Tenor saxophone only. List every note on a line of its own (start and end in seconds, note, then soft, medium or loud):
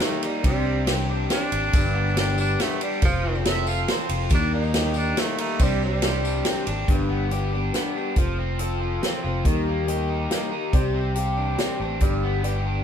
0.03 0.28 A3 medium
0.26 0.45 G3 medium
0.47 0.87 G3 medium
1.33 2.15 D4 medium
2.19 2.39 D4 medium
2.40 2.63 D4 medium
2.62 2.82 A3 medium
2.83 3.03 G3 medium
3.05 3.45 F3 loud
4.35 4.54 D4 loud
4.54 5.00 D#4 medium
4.98 5.21 D4 medium
5.19 5.39 A3 medium
5.41 5.65 A3 medium
5.63 5.82 G3 loud
5.85 6.66 G3 medium